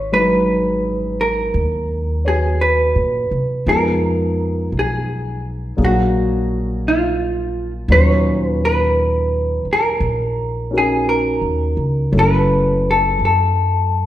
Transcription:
0.00 1.50 G#1 medium
0.00 0.13 C#5 medium
0.12 3.66 F#3 soft
0.12 3.65 G#3 soft
0.12 3.65 D#4 soft
0.12 3.66 G#4 soft
0.12 1.20 B4 medium
1.21 2.30 A#4 medium
1.54 2.92 D#2 medium
2.25 3.67 F#4 soft
2.25 2.62 G#4 medium
2.25 3.66 B4 soft
2.25 3.66 C#5 soft
2.61 3.69 B4 medium
2.96 3.29 A#2 soft
3.31 3.64 C3 medium
3.66 4.69 F2 medium
3.66 5.79 F3 soft
3.66 5.78 G#3 soft
3.66 5.79 B3 soft
3.66 5.79 D#4 soft
3.66 5.77 G#4 soft
3.66 4.70 A#4 medium
4.72 5.74 B1 medium
4.79 5.84 G#4 medium
5.77 7.85 A#1 medium
5.77 7.88 F#3 soft
5.77 7.89 A#3 soft
5.77 7.89 D4 soft
5.77 7.90 G#4 soft
5.77 7.89 F5 soft
5.85 6.88 F#4 medium
6.88 7.71 F4 medium
7.88 9.62 D#2 medium
7.88 12.13 A#2 soft
7.88 12.11 F#3 soft
7.88 10.69 C#4 soft
7.88 10.71 D#4 soft
7.88 12.14 C#5 soft
7.88 8.49 C#5 medium
8.49 8.65 B4 medium
8.65 9.65 B4 medium
9.65 muted upright bass stroke soft
9.73 10.77 A#4 medium
10.00 11.38 A#1 medium
10.71 12.11 C#4 soft
10.71 12.13 D#4 soft
10.71 12.13 F#4 soft
10.71 12.14 A#4 soft
10.78 11.09 G#4 medium
11.09 12.17 A#4 medium
11.41 11.75 D#2 soft
11.77 12.10 C#2 medium
12.12 13.15 F#1 medium
12.12 14.06 F#3 soft
12.12 14.06 A3 soft
12.12 14.06 C#4 soft
12.12 14.06 E4 soft
12.12 14.06 A4 soft
12.19 12.90 B4 medium
12.91 13.23 A4 medium
13.19 14.06 F#2 medium
13.25 14.06 A4 medium

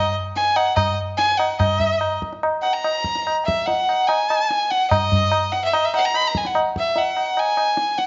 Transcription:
0.00 0.13 D#5 medium
0.36 0.57 G#5 loud
0.36 tabla te medium
0.56 0.75 F#5 medium
0.56 tabla na medium
0.76 0.95 D#5 medium
0.76 tabla na medium
0.76 tabla ge medium
1.17 1.39 G#5 loud
1.17 tabla te medium
1.37 1.58 F#5 medium
1.37 tabla na medium
1.59 2.17 D#5 medium
1.59 tabla na loud
1.59 tabla ge loud
1.80 tabla ge medium
2.01 tabla na medium
2.22 tabla ke medium
2.33 tabla te medium
2.43 tabla na medium
2.62 2.75 F#5 medium
2.62 tabla na medium
2.73 3.35 A#5 medium
2.84 tabla na medium
3.04 tabla ke medium
3.15 tabla te medium
3.27 tabla na medium
3.45 3.68 E5 medium
3.45 tabla ke medium
3.66 4.09 F#5 medium
3.66 tabla tin medium
3.89 tabla na medium
4.07 4.72 G#5 loud
4.07 tabla na medium
4.30 tabla na medium
4.51 tabla te medium
4.71 4.90 F#5 medium
4.71 tabla te medium
4.90 5.53 D#5 loud
4.90 tabla na loud
4.90 tabla ge loud
5.12 tabla ge medium
5.32 tabla na medium
5.52 5.62 F#5 loud
5.52 tabla te medium
5.64 5.75 E5 medium
5.73 5.86 D#5 loud
5.73 tabla na medium
5.85 5.94 E5 medium
5.94 6.07 F#5 loud
5.94 tabla na medium
6.05 6.17 A#5 loud
6.14 6.29 B5 loud
6.14 tabla na medium
6.27 6.38 A#5 medium
6.35 6.48 G#5 loud
6.35 tabla ke medium
6.45 6.56 F#5 medium
6.45 tabla te medium
6.55 tabla na medium
6.76 7.00 E5 medium
6.76 tabla ke medium
6.96 7.40 F#5 medium
6.96 tabla tin medium
7.17 tabla na medium
7.37 7.99 G#5 medium
7.37 tabla na medium
7.57 tabla na medium
7.77 tabla te medium
7.98 8.07 F#5 medium
7.98 tabla te medium

